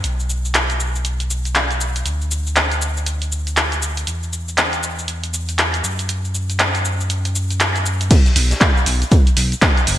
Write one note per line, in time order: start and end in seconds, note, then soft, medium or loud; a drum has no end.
0.04 2.04 B1 medium
0.04 closed hi-hat medium
0.04 cabasa soft
0.20 cabasa soft
0.30 cabasa medium
0.45 cabasa soft
0.54 clap loud
0.54 closed hi-hat medium
0.54 cabasa soft
0.70 closed hi-hat soft
0.70 cabasa soft
0.80 cabasa medium
0.95 cabasa soft
1.05 closed hi-hat medium
1.05 cabasa soft
1.20 closed hi-hat soft
1.20 cabasa soft
1.30 cabasa medium
1.45 closed hi-hat soft
1.45 cabasa soft
1.55 clap loud
1.55 closed hi-hat medium
1.55 cabasa soft
1.71 closed hi-hat soft
1.71 cabasa soft
1.81 cabasa medium
1.96 closed hi-hat soft
1.96 cabasa soft
2.06 4.05 D2 medium
2.06 closed hi-hat medium
2.06 cabasa soft
2.21 cabasa soft
2.31 cabasa medium
2.47 cabasa soft
2.56 clap loud
2.56 closed hi-hat medium
2.56 cabasa soft
2.71 closed hi-hat soft
2.71 cabasa soft
2.82 cabasa medium
2.97 cabasa soft
3.06 closed hi-hat medium
3.06 cabasa soft
3.22 closed hi-hat soft
3.22 cabasa soft
3.32 cabasa medium
3.47 closed hi-hat soft
3.47 cabasa soft
3.57 clap loud
3.57 closed hi-hat medium
3.57 cabasa soft
3.72 closed hi-hat soft
3.72 cabasa soft
3.82 cabasa medium
3.97 closed hi-hat medium
3.97 cabasa soft
4.07 5.82 E2 medium
4.07 closed hi-hat medium
4.07 cabasa soft
4.23 cabasa soft
4.33 cabasa medium
4.48 cabasa soft
4.58 clap loud
4.58 closed hi-hat medium
4.58 cabasa soft
4.73 closed hi-hat soft
4.73 cabasa soft
4.83 cabasa medium
4.99 cabasa soft
5.08 closed hi-hat medium
5.08 cabasa soft
5.24 closed hi-hat medium
5.24 cabasa soft
5.34 cabasa medium
5.49 closed hi-hat soft
5.49 cabasa soft
5.59 clap loud
5.59 closed hi-hat medium
5.59 cabasa soft
5.74 closed hi-hat soft
5.74 cabasa soft
5.84 8.09 F#2 medium
5.84 cabasa medium
5.99 closed hi-hat medium
5.99 cabasa soft
6.09 closed hi-hat medium
6.09 cabasa soft
6.25 cabasa soft
6.35 cabasa medium
6.50 closed hi-hat soft
6.50 cabasa soft
6.59 clap loud
6.59 closed hi-hat medium
6.59 cabasa soft
6.75 closed hi-hat soft
6.75 cabasa soft
6.85 cabasa medium
7.00 cabasa soft
7.10 closed hi-hat medium
7.10 cabasa soft
7.25 closed hi-hat medium
7.25 cabasa soft
7.35 cabasa medium
7.50 closed hi-hat soft
7.50 cabasa soft
7.60 clap loud
7.60 closed hi-hat medium
7.60 cabasa soft
7.76 closed hi-hat soft
7.76 cabasa soft
7.86 cabasa medium
8.01 closed hi-hat medium
8.01 cabasa soft
8.11 kick loud
8.11 closed hi-hat medium
8.11 crash loud
8.11 cabasa soft
8.26 snare soft
8.26 closed hi-hat soft
8.26 cabasa soft
8.36 8.54 B1 loud
8.36 open hi-hat medium
8.36 open hi-hat loud
8.36 cabasa medium
8.51 snare medium
8.51 closed hi-hat soft
8.51 cabasa soft
8.60 kick loud
8.60 snare loud
8.60 clap loud
8.60 closed hi-hat medium
8.60 cabasa soft
8.77 closed hi-hat soft
8.77 cabasa soft
8.86 9.04 B1 loud
8.86 closed hi-hat medium
8.86 open hi-hat loud
8.86 cabasa medium
9.02 closed hi-hat soft
9.02 cabasa soft
9.11 kick loud
9.11 closed hi-hat medium
9.11 cabasa soft
9.27 closed hi-hat medium
9.27 cabasa soft
9.37 9.54 B1 loud
9.37 closed hi-hat medium
9.37 open hi-hat loud
9.37 cabasa medium
9.52 closed hi-hat soft
9.52 cabasa soft
9.62 kick loud
9.62 snare loud
9.62 clap loud
9.62 closed hi-hat medium
9.62 cabasa soft
9.77 closed hi-hat soft
9.77 cabasa soft
9.87 9.98 F#1 loud
9.87 closed hi-hat medium
9.87 open hi-hat loud
9.87 cabasa medium